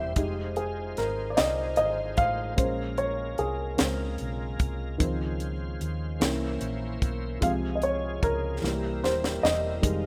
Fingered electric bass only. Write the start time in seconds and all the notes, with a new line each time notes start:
Already playing: E1
0.17 F1
0.98 G#1
1.38 C2
1.79 G#1
2.18 A1
2.58 A#1
3.39 C2
3.80 C#2
4.21 B1
4.60 C2
5.00 C#2
5.81 D#2
6.21 C2
6.61 A#1
7.02 B1
7.42 C2
8.23 C#2
8.63 C2
9.03 D#1
9.43 E1
9.83 F1